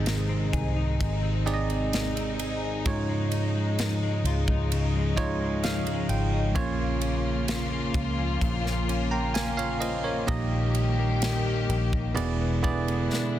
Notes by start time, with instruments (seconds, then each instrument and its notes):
Already playing: fingered electric bass G#1, tine electric piano G#2 D#3 C4 D#4 G#4 D#5, clean electric guitar G#2 C4, string section C3 D#3 G#3 D#4
0.06 clean electric guitar D#4, snare, ride
0.29 clean electric guitar C4
0.53 fingered electric bass C2, clean electric guitar G#4, kick, ride
0.76 clean electric guitar D#4
1.00 fingered electric bass G#1, clean electric guitar G#2, string section G#3, kick, ride
1.22 clean electric guitar C4
1.46 tine electric piano C4 D#4 G#4 D5, clean electric guitar D#4, ride
1.54 tine electric piano D#5
1.70 clean electric guitar C4, ride
1.92 clean electric guitar D#4, snare, ride
2.15 clean electric guitar C4, ride
2.39 clean electric guitar G#4, ride
2.63 clean electric guitar D#4
2.84 fingered electric bass C#2, tine electric piano G#2 G#3 D#4 F4 C#5, string section C#3 F3 G#3, clean electric guitar C#3, kick, ride
3.09 clean electric guitar G#3
3.32 clean electric guitar D#4, ride
3.55 clean electric guitar G#3
3.79 clean electric guitar D#4, snare, ride
4.03 clean electric guitar G#3
4.24 fingered electric bass C#2, clean electric guitar F4, ride
4.48 clean electric guitar D#4, kick
4.72 clean electric guitar C#3, ride
4.96 clean electric guitar G#3
5.16 tine electric piano G#3 D#4 F4 C#5 D#5, clean electric guitar D#4, kick, ride
5.41 clean electric guitar G#3
5.64 clean electric guitar D#4, tine electric piano F5, snare, ride
5.87 clean electric guitar G#3, ride
6.09 fingered electric bass G#1, clean electric guitar F4, tine electric piano G5, ride
6.33 clean electric guitar D#4
6.55 fingered electric bass A#1, clean electric guitar A#2, tine electric piano A#3 C#4 F4 C#5, string section A#3 F4, kick, ride
6.80 clean electric guitar A#3
7.01 clean electric guitar C#4, ride
7.25 clean electric guitar A#3
7.48 clean electric guitar C#4, snare, ride
7.71 clean electric guitar A#3
7.94 fingered electric bass C#2, clean electric guitar F4, kick, ride
8.18 clean electric guitar C#4
8.41 fingered electric bass A#1, clean electric guitar A#2, kick, ride
8.65 clean electric guitar A#3, snare
8.89 clean electric guitar C#4, ride
9.11 clean electric guitar A#3, tine electric piano G5 A#5
9.34 clean electric guitar C#4, tine electric piano F5 G#5, snare, ride
9.57 clean electric guitar A#3, tine electric piano C#5 F5, ride
9.80 clean electric guitar F4, tine electric piano C5 D#5, ride
10.04 clean electric guitar C#4, tine electric piano A#4 C#5
10.27 fingered electric bass A#1, tine electric piano A#2 A#3 D#4 G4 D#5, clean electric guitar A#2, string section D#3 G3 G4, kick, ride
10.52 clean electric guitar A#3
10.75 clean electric guitar D#4, ride
10.99 clean electric guitar A#3
11.22 clean electric guitar D#4, snare, ride
11.45 clean electric guitar A#3
11.69 fingered electric bass A#1, clean electric guitar G4, ride
11.93 clean electric guitar D#4, kick
12.14 fingered electric bass E1, tine electric piano B2 B3 E4 G#4 D5, string section D3 G#3 B3 E4, clean electric guitar E3, ride
12.41 clean electric guitar B3
12.63 tine electric piano B3 E4 G#4 D5, clean electric guitar D4, kick, ride
12.88 clean electric guitar B3, ride
13.12 clean electric guitar D4, snare